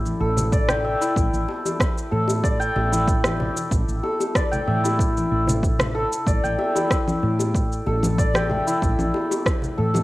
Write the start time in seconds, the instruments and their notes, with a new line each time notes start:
Already playing: fretless electric bass A2, santur E4 A4 D5 E5 G5
0.05 high conga, shaker
0.20 fretless electric bass A1, santur A4
0.37 low conga, shaker
0.52 santur D5, kick, shaker
0.69 santur G5, cross-stick, low conga, shaker
0.84 santur E5
1.01 santur E4, shaker
1.16 fretless electric bass A1, kick, shaker
1.33 fretless electric bass A1, shaker
1.48 high bongo
1.65 high bongo, high conga, shaker
1.80 kick, cross-stick, shaker
1.98 shaker
2.12 fretless electric bass A2, santur A4, high conga
2.28 high bongo, shaker
2.44 santur D5, kick, shaker
2.60 santur G5, shaker
2.76 fretless electric bass A1, santur E5, high bongo
2.92 santur E4, high conga, shaker
3.08 kick, shaker
3.24 cross-stick, high bongo, high conga, shaker
3.40 low conga
3.56 high conga, shaker
3.71 fretless electric bass A1, kick, shaker
3.88 fretless electric bass A1, shaker
4.03 santur A4, high bongo
4.20 high bongo, shaker
4.35 santur D5, kick, cross-stick, shaker
4.51 santur G5, low conga, shaker
4.67 fretless electric bass A2, santur E5, high conga
4.84 santur E4, high bongo, shaker
4.99 kick, shaker
5.17 high conga, shaker
5.31 fretless electric bass A1
5.47 low conga, shaker
5.63 kick, shaker
5.79 cross-stick, low conga, shaker
5.95 santur A4
6.13 shaker
6.27 fretless electric bass A1, santur D5, kick, shaker
6.44 fretless electric bass A1, santur G5, shaker
6.59 santur E5, high bongo
6.75 santur E4, high bongo, high conga, shaker
6.91 kick, cross-stick, shaker
7.08 low conga, shaker
7.23 fretless electric bass A2, high conga
7.39 high bongo, shaker
7.54 kick, shaker
7.72 shaker
7.86 fretless electric bass A1, santur A4, high bongo
8.03 high conga, low conga, shaker
8.18 santur D5, kick, shaker
8.34 santur G5, cross-stick, high bongo, high conga, shaker
8.50 santur E5, low conga
8.66 santur E4, high conga, shaker
8.82 fretless electric bass A1, kick, shaker
8.99 fretless electric bass A1, low conga, shaker
9.14 high bongo
9.31 high bongo, shaker
9.46 kick, cross-stick, shaker
9.62 low conga, shaker
9.78 fretless electric bass A2, santur A4, high conga
9.94 high bongo, low conga, shaker